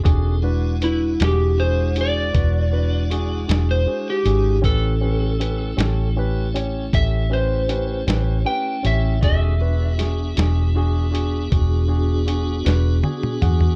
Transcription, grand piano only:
X:1
M:12/8
L:1/8
Q:3/8=52
K:Edor
V:1 name="Grand piano"
[DF^G] [DFB] [DFB] [DFG] [DFG] [DFG] [DFB] [DFB] [DFG] [DFG] [DFG] [DFG] | [CGB] [CGB] [CGB] [CGA] [CGB] [CGc] [CGA] [CGB] [CGB] [CGB] [CGB] [CGc] | [DF^G] [DFB] [DFG] [DFG] [DFG] [DFG] [DFG] [DFG] [DFG] [DFB] [DFG^g] [DFGf] |]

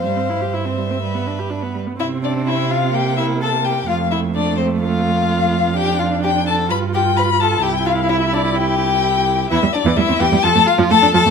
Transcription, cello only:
X:1
M:4/4
L:1/16
Q:1/4=128
K:C
V:1 name="Cello" clef=bass
G,,12- G,,2 z2 | C,16 | F,,16- | F,,8 G,,8 |
C,,16 | E,, E,, z E,, E,, E,, E,, E,, F,, F,, z F,, F,, F,, F,, F,, |]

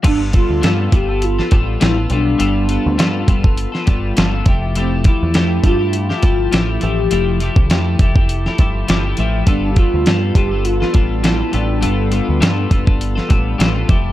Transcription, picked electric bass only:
X:1
M:4/4
L:1/16
Q:"Swing 16ths" 1/4=102
K:Gmix
V:1 name="Picked electric bass" clef=bass
G,,,3 D,, G,,2 G,,,4 A,,,2 A,,,2 B,,,2 | G,,,3 D,, G,,2 G,,,3 z G,,,2 G,,,2 F,,,2- | F,,,3 E,, F,,2 G,,4 G,,,2 A,,,2 A,,,2 | F,,,3 C,, F,,2 F,,,4 G,,,2 G,,,2 A,,,2 |
G,,,3 D,, G,,2 G,,,4 A,,,4 A,,,2 | G,,,3 D,, G,,2 G,,,4 A,,,2 A,,,2 F,,,2 |]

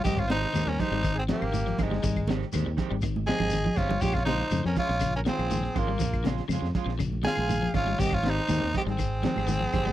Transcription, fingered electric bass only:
X:1
M:4/4
L:1/16
Q:1/4=121
K:Ab
V:1 name="Fingered electric bass" clef=bass
A,,,4 E,, E,, z A,,,4 A,,,3 G,,,2 | A,,,4 E,, E,, z A,,,4 A,,,3 G,,,2 | B,,,4 F,, F,, z B,,,4 B,,,3 A,,,2 | B,,,4 F,, F,, z B,,,4 B,,,3 A,,,2 |
A,,,4 E,, E,, z A,,,4 A,,,3 G,,,2 |]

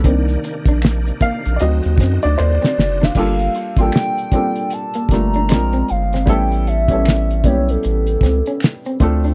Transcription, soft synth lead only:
X:1
M:4/4
L:1/16
Q:"Swing 16ths" 1/4=77
K:Gm
V:1 name="Soft synth lead"
z12 d3 f- | f3 g4- g a2 b4 f2 | g2 =e4 ^c A6- A z2 |]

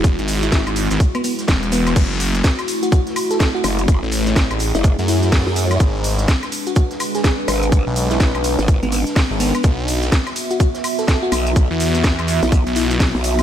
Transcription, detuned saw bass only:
X:1
M:4/4
L:1/16
Q:"Swing 16ths" 1/4=125
K:F#m
V:1 name="Detuned saw bass" clef=bass
E,,, G,,,4 G,,,2 G,,, z4 E,,,4 | F,,,4 z12 | z A,,,4 A,,,2 z2 F,,4 z3 | G,,,4 z12 |
z B,,,4 B,,,2 z6 G,,,2 z | B,,,4 z12 | z E,,4 E,,2 z2 B,,,4 z3 |]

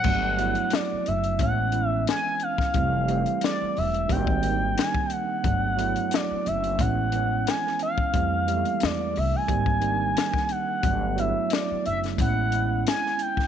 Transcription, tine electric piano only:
X:1
M:4/4
L:1/8
Q:"Swing 16ths" 1/4=89
K:Ador
V:1 name="Tine electric piano"
[F,A,B,D] [F,A,B,E]3 [E,^G,B,^C] [E,G,B,E]2 z | [E,G,A,C] [E,G,A,C]3 [_E,G,_B,C] [E,G,B,D_E]2 z | [F,A,B,D] [F,A,B,E]3 [E,^G,B,^C] [E,G,B,C]2 z | [E,G,A,C] [E,G,_A,=A,B,]3 [_E,G,_B,C] [E,G,B,CD]2 z |
[F,A,B,D] [F,A,B,E]3 [^G,B,^CE] [G,B,CE]2 z |]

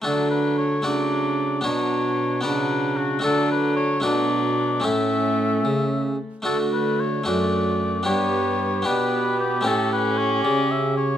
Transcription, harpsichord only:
X:1
M:6/8
L:1/8
Q:3/8=75
K:D
V:1 name="Harpsichord"
[A,DF]3 [A,Fd]3 | [B,DF]3 [B,Fd]3 | [A,DF]3 [A,DF]3 | [A,CE]6 |
[A,DF]3 [A,DF]3 | [B,DG]3 [B,DG]3 | [A,CG]6 |]
V:2 name="Harpsichord" clef=bass
D,3 z3 | B,,3 B,,3 | D,3 B,,3 | A,,3 C,2 z |
D,3 F,,3 | G,,3 B,,3 | A,,3 C,3 |]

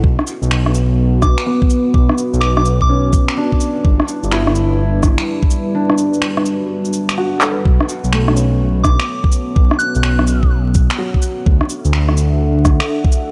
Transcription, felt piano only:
X:1
M:4/4
L:1/16
Q:"Swing 16ths" 1/4=126
K:Bm
V:1 name="Felt piano"
z12 B,4- | B,3 z4 z C4 D4- | D2 z2 E6- E z4 z | D6- D z4 z F A B2- |
B4 A, C6- C z4 | z12 F,4- | F,2 z12 z2 |]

